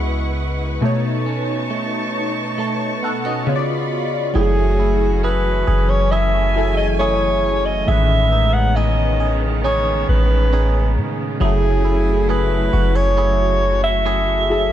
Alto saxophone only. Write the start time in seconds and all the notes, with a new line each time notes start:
4.36 G#4
5.24 B4
5.90 C#5
6.12 E5
6.78 D#5
7.00 C#5
7.66 D#5
7.88 E5
8.54 F#5
8.76 D#5
9.65 C#5
10.09 B4
11.42 G#4
12.30 B4
12.96 C#5
13.84 E5